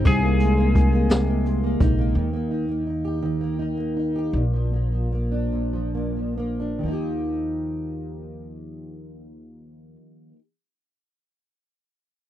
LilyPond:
<<
  \new Staff \with { instrumentName = "Clean electric guitar" } { \time 6/8 \key ees \major \tempo 4. = 49 aes'2~ aes'8 r8 | r2. | r2. | r2. |
r2. | }
  \new Staff \with { instrumentName = "Steel-string acoustic guitar" } { \time 6/8 \key ees \major c16 bes16 aes16 bes16 ees'16 bes16 c16 bes16 aes16 bes16 ees'16 bes16 | ees16 bes16 ees'16 bes16 ees'16 g'16 ees16 bes16 ees'16 bes16 ees'16 g'16 | bes,16 f16 bes16 f16 bes16 d'16 bes,16 f16 bes16 f16 bes16 d'16 | <ees f bes ees' g'>2.~ |
<ees f bes ees' g'>2. | }
  \new Staff \with { instrumentName = "Upright bass" } { \clef bass \time 6/8 \key ees \major c,2~ c,8 bes,,8 | ees,2. | bes,,2. | ees,2.~ |
ees,2. | }
  \new DrumStaff \with { instrumentName = "Drums" } \drummode { \time 6/8 <hh bd>8 hh8 <hh bd>8 <hh sn>8 hh8 <hh bd>8 | r4. r4. | r4. r4. | r4. r4. |
r4. r4. | }
>>